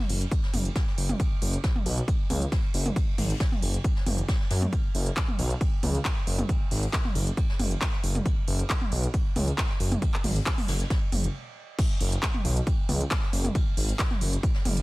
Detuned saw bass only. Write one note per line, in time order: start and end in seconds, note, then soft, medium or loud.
0.10 0.25 F#1 loud
0.54 0.69 F#1 medium
0.98 1.13 F#1 loud
1.42 1.57 F#1 loud
1.86 2.01 B1 medium
2.30 2.45 C#2 medium
2.74 2.89 F#1 medium
3.18 3.33 G#1 medium
3.62 3.78 F#1 loud
4.07 4.22 F#1 loud
4.51 4.66 F#2 medium
4.95 5.10 F#1 loud
5.39 5.54 B1 medium
5.83 5.98 C#2 medium
6.27 6.42 F#1 medium
6.71 6.86 G#1 medium
7.15 7.30 F#1 loud
7.59 7.75 F#1 medium
8.04 8.19 F#1 loud
8.48 8.63 F#1 loud
8.92 9.07 B1 medium
9.36 9.51 C#2 medium
9.80 9.95 F#1 medium
10.24 10.39 G#1 medium
10.68 10.84 F#1 loud
11.13 11.28 F#1 medium
12.01 12.16 F#1 loud
12.45 12.60 B1 medium
12.89 13.04 C#2 medium
13.33 13.48 F#1 medium
13.77 13.92 G#1 medium
14.21 14.36 F#1 loud
14.65 14.81 F#1 loud